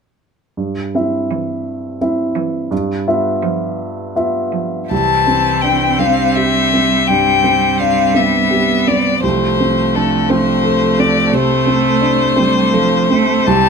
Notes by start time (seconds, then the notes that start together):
0.57 G2
0.95 C4 E4 E5
1.30 E3
2.01 C4 E4 E5
2.35 E3
2.71 G2
3.08 B3 F4 E5
3.42 F3
4.16 B3 F4 E5
4.52 F3
4.89 C2 E3 C4 A5
5.27 C4
5.61 D4 G5
5.98 G3 C4 F5
6.35 G4 E5
6.73 C4
7.07 G2 C4 G5
7.44 C4
7.80 D4 F5
8.14 B3 C4 E5
8.51 G4
8.87 C4 D5
9.22 C2 F3 A3 C5
9.60 C4
9.95 D4 A4
10.30 C4 C5
10.64 A4
10.99 C4 D5
11.32 C3 A3 C5
11.66 C4
12.01 D4
12.36 G3 C4
12.73 F3 A4
13.10 A3 C4
13.45 C2 G3 C4 A5